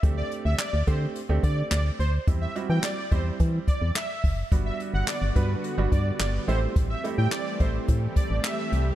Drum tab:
HH |xxxxxxxx|xxxxxxxo|xxxxxxxx|xxxxxxxx|
CP |--x---x-|--x---x-|--x---x-|--x---x-|
SD |--o---o-|--o---o-|--o---o-|--o---o-|
BD |o--o-o--|o--ooo-o|o--o-o--|o--ooo--|